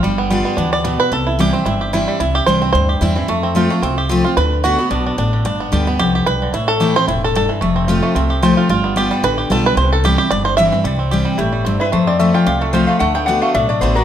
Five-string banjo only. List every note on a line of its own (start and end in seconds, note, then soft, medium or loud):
0.03 0.30 G3 medium
0.18 0.44 B3 medium
0.30 1.16 G3 medium
0.45 0.82 B3 medium
0.57 0.72 D4 medium
0.73 0.98 D5 loud
0.84 1.12 B3 medium
1.00 1.12 B4 loud
1.13 1.40 A4 loud
1.27 1.64 E4 medium
1.40 1.79 G4 medium
1.53 1.90 C4 medium
1.66 1.92 E4 medium
1.81 2.18 G4 medium
1.93 2.19 E4 medium
2.08 2.20 G3 medium
2.20 2.46 E4 medium
2.35 2.48 G4 medium
2.46 2.71 C5 loud
2.62 2.99 C4 medium
2.73 3.01 C5 loud
2.89 3.26 G4 medium
3.02 3.29 E4 medium
3.16 3.29 E3 medium
3.29 3.68 A3 medium
3.43 3.80 C4 medium
3.56 3.95 F4 medium
3.71 4.08 A3 medium
3.83 4.09 C4 medium
3.98 4.35 G4 medium
4.10 4.37 C4 medium
4.25 4.37 F4 medium
4.37 4.63 B4 loud
4.64 4.89 F#4 medium
4.79 5.16 B3 medium
4.91 5.05 D4 medium
5.07 5.17 D4 medium
5.18 5.45 D4 medium
5.33 5.45 D3 medium
5.46 5.85 D4 medium
5.60 5.86 B3 medium
5.72 5.98 G4 medium
5.87 6.24 B3 medium
5.99 6.14 G4 medium
6.15 6.52 G4 medium
6.26 6.52 B4 loud
6.42 6.54 D3 medium
6.54 6.93 E4 medium
6.68 6.93 A4 loud
6.81 7.20 G4 medium
6.96 7.08 C5 loud
7.08 7.24 E4 medium
7.24 7.35 A4 medium
7.36 7.49 A4 medium
7.49 7.61 E3 medium
7.61 8.00 A3 medium
7.76 8.13 C4 medium
7.88 8.27 F4 medium
8.03 8.40 A3 medium
8.15 8.54 C4 medium
8.30 8.67 G4 medium
8.43 8.57 C5 loud
8.57 8.69 F4 medium
8.70 8.95 F4 medium
8.84 9.21 B3 medium
8.97 9.25 G4 medium
9.11 9.55 G3 medium
9.24 9.38 B4 loud
9.38 9.96 G4 medium
9.52 9.66 A4 loud
9.66 9.77 B4 loud
9.77 9.91 C5 medium
9.93 10.05 A4 medium
10.05 10.17 G4 loud
10.18 10.31 G4 loud
10.31 10.45 D5 loud
10.45 10.56 C5 loud
10.57 10.83 E5 loud
10.72 10.85 E3 medium
10.84 11.24 G3 medium
10.99 11.36 C4 medium
11.11 11.51 G4 medium
11.25 11.51 G3 medium
11.38 11.77 E4 medium
11.53 11.90 G3 medium
11.65 11.92 C4 medium
11.80 11.93 E4 medium
11.92 12.19 A3 medium
12.07 12.44 C4 medium
12.20 12.59 A3 medium
12.34 12.71 F4 medium
12.47 12.86 G4 medium
12.62 12.87 A3 medium
12.74 13.01 F4 medium
12.89 12.99 A3 medium
13.01 13.40 A3 medium
13.15 13.52 B3 medium
13.27 13.54 D4 medium
13.42 13.69 A3 medium
13.55 13.94 D4 medium
13.70 14.04 A3 medium
13.82 14.04 B3 medium
13.96 14.04 D4 medium